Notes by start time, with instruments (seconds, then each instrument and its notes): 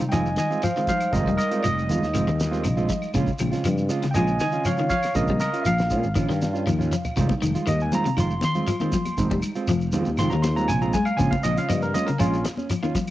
Already playing: tine electric piano G3 G#3 D#4
0.01 muted fretless electric bass stroke, shekere
0.09 clean electric guitar D#3 F3 G#3 C4, tine electric piano D#5 G5 G#5, snare, closed hi-hat, claves
0.13 fretless electric bass F1, clean electric guitar F4, shekere
0.26 shekere
0.36 clean electric guitar D#3, tine electric piano D#5 G#5, snare, closed hi-hat, shekere
0.50 clean electric guitar G#3 C4 F4, shekere
0.62 clean electric guitar F3, tine electric piano C5 F5, closed hi-hat, claves, shekere
0.76 clean electric guitar D#3 G#3 C4 F4, shekere
0.87 clean electric guitar F3, tine electric piano G3 G#3 D#4 C5 F5, kick, closed hi-hat, shekere
1.00 closed hi-hat, claves, shekere
1.11 fretless electric bass F1, clean electric guitar D#3 G#3 C4 F4, tine electric piano G3 G#3 D#4 A#4 D#5, kick, closed hi-hat, shekere
1.26 clean electric guitar G3, kick, shekere
1.37 tine electric piano A#4 D#5, closed hi-hat, claves, shekere
1.51 clean electric guitar G#3 C4 F4, closed hi-hat, shekere
1.59 tine electric piano D5, claves
1.64 fretless electric bass F1, clean electric guitar F3, tine electric piano D#5, closed hi-hat, shekere
1.79 shekere
1.89 fretless electric bass F2, clean electric guitar D#3 G#3 F4, muted clean electric guitar stroke, closed hi-hat, shekere
2.02 fretless electric bass D#2, snare, shekere
2.13 fretless electric bass F1, clean electric guitar D#3 G#3 C4 F4, closed hi-hat, claves, shekere
2.28 fretless electric bass D#2, clean electric guitar D#3, shekere
2.40 snare, closed hi-hat, shekere
2.51 clean electric guitar G#3 C4 F4, snare, shekere
2.63 fretless electric bass A#1, clean electric guitar C3, closed hi-hat, claves, shekere
2.77 clean electric guitar G#3 C4 F4, shekere
2.89 clean electric guitar F3, kick, closed hi-hat, shekere
3.02 claves, shekere
3.14 fretless electric bass A#1, clean electric guitar C#3 G#3 C#4 F4, kick, closed hi-hat, shekere
3.27 kick, shekere
3.38 fretless electric bass A#1, tine electric piano C#3 G#3 C4, clean electric guitar F3, closed hi-hat, claves, shekere
3.52 clean electric guitar C#4 F4, snare, closed hi-hat, shekere
3.64 fretless electric bass G2, clean electric guitar F3, closed hi-hat, claves, shekere
3.78 shekere
3.89 clean electric guitar G#3 C#4 F4, closed hi-hat, shekere
4.03 clean electric guitar C#3, muted fretless electric bass stroke, snare, closed hi-hat, shekere
4.11 clean electric guitar G#3, tine electric piano D#5 G5, closed hi-hat, shekere
4.15 fretless electric bass A#1, clean electric guitar F3 C#4 F4, tine electric piano G#5, claves
4.27 shekere
4.40 clean electric guitar D#3, tine electric piano D#5 G#5, snare, closed hi-hat, shekere
4.52 clean electric guitar C#4 F4, shekere
4.65 tine electric piano C#3 G#3 C4 C#5 F5, clean electric guitar F3, closed hi-hat, claves, shekere
4.78 clean electric guitar D#3 C#4 F4, shekere
4.89 clean electric guitar F3, tine electric piano C#5 F5, kick, closed hi-hat, shekere
5.03 snare, closed hi-hat, claves, shekere
5.15 fretless electric bass A#1, tine electric piano C#3 G#3 C4 A#4 D#5, clean electric guitar G#3 C#4 F4, kick, closed hi-hat, shekere
5.27 clean electric guitar G3, kick, shekere
5.40 tine electric piano A#4 D#5, snare, closed hi-hat, claves, shekere
5.53 clean electric guitar C#4 F4, closed hi-hat, shekere
5.62 tine electric piano E5, shekere
5.66 fretless electric bass A#1, clean electric guitar F3, tine electric piano F5, closed hi-hat, claves
5.78 snare, shekere
5.90 fretless electric bass A#2, clean electric guitar G#3 C#4 F4, kick, closed hi-hat, shekere
6.03 fretless electric bass G#1, shekere
6.15 fretless electric bass A#1, clean electric guitar D#3 C#4 F4, muted clean electric guitar stroke, kick, closed hi-hat, claves, shekere
6.29 fretless electric bass G2, clean electric guitar D#3, snare, shekere
6.42 snare, closed hi-hat, shekere
6.54 clean electric guitar C#4 F4, shekere
6.66 fretless electric bass D#2, clean electric guitar F3, high tom, claves, shekere
6.79 clean electric guitar C#4 F4, mid tom, shekere
6.92 clean electric guitar F3, mid tom, shekere
7.05 floor tom, claves, shekere
7.16 fretless electric bass F1, clean electric guitar C3 D#3 G#3 C4 F4, tine electric piano G3 G#3 D#4, kick, closed hi-hat, shekere
7.29 kick, high conga, shekere
7.42 fretless electric bass F1, clean electric guitar D#3, closed hi-hat, claves, shekere
7.55 clean electric guitar G#3 F4, closed hi-hat, shekere
7.67 fretless electric bass D#2, clean electric guitar D#3, tine electric piano D#5, closed hi-hat, claves, shekere
7.80 tine electric piano G#5, shekere
7.92 clean electric guitar D#3 G#3 C4 F4, tine electric piano A#5, closed hi-hat, high conga, low conga, shekere
8.05 clean electric guitar C3, muted fretless electric bass stroke, closed hi-hat, shekere
8.17 fretless electric bass F1, clean electric guitar D#3 F3 G#3 F4, tine electric piano C6, muted clean electric guitar stroke, closed hi-hat, claves, shekere
8.30 shekere
8.41 clean electric guitar D#3, tine electric piano C6, snare, closed hi-hat, high conga, shekere
8.55 clean electric guitar G#3 C4 F4, low conga, shekere
8.67 clean electric guitar F3, closed hi-hat, claves, shekere
8.80 clean electric guitar D#3 G#3 C4 F4, high conga, shekere
8.92 clean electric guitar F3, kick, closed hi-hat, low conga, shekere
9.05 closed hi-hat, high conga, claves, shekere
9.18 fretless electric bass F1, clean electric guitar D#3 G#3 C4, tine electric piano G3 G#3 D#4, muted clean electric guitar stroke, kick, closed hi-hat, shekere
9.31 clean electric guitar G3, kick, high conga, shekere
9.42 closed hi-hat, claves, shekere
9.55 clean electric guitar G#3 C4 F4, closed hi-hat, shekere
9.67 fretless electric bass F1, clean electric guitar F3, closed hi-hat, claves, shekere
9.81 shekere
9.92 fretless electric bass F2, clean electric guitar D#3 G#3 C4 F4, closed hi-hat, high conga, low conga, shekere
10.05 fretless electric bass D#2, shekere
10.17 fretless electric bass F1, clean electric guitar D#3 G#3 C4 F4, tine electric piano C6, closed hi-hat, claves, shekere
10.30 fretless electric bass D#2, clean electric guitar D#3, tine electric piano A#5, shekere
10.43 tine electric piano C6, snare, closed hi-hat, high conga, shekere
10.56 clean electric guitar G#3 C4 F4, tine electric piano A#5, low conga, shekere
10.68 fretless electric bass A#1, clean electric guitar C3, tine electric piano G#5, closed hi-hat, claves, shekere
10.82 clean electric guitar G#3 C4 F4, tine electric piano A#5, high conga, shekere
10.93 clean electric guitar G#3, tine electric piano G#5, kick, closed hi-hat, low conga, shekere
11.05 tine electric piano F5, claves, shekere
11.16 fretless electric bass A#1, tine electric piano C#3 G#3 C4 G#5, clean electric guitar C#3 G#3 C#4, kick, closed hi-hat, shekere
11.20 clean electric guitar F4
11.31 tine electric piano F5, kick, high conga, shekere
11.43 fretless electric bass A#1, clean electric guitar F3, tine electric piano D#5, closed hi-hat, claves, shekere
11.57 clean electric guitar C#4 F4, tine electric piano F5, closed hi-hat, shekere
11.68 fretless electric bass G2, clean electric guitar F3, tine electric piano D#5, closed hi-hat, high conga, claves, shekere
11.82 tine electric piano A#4, shekere
11.94 clean electric guitar G#3 C#4 F4, tine electric piano D#5, closed hi-hat, high conga, low conga, shekere
12.06 clean electric guitar C#3, tine electric piano A#4, muted fretless electric bass stroke, closed hi-hat, shekere
12.19 fretless electric bass A#1, clean electric guitar F3 G#3 C#4 F4, tine electric piano C#4 F4, closed hi-hat, claves, shekere
12.33 shekere
12.45 muted clean electric guitar stroke, snare, closed hi-hat, high conga, shekere
12.57 clean electric guitar C#4, high conga, shekere
12.70 clean electric guitar F3, closed hi-hat, claves, shekere
12.83 clean electric guitar D#3 C#4 F4, high conga, shekere
12.95 clean electric guitar F3, kick, closed hi-hat, low conga, shekere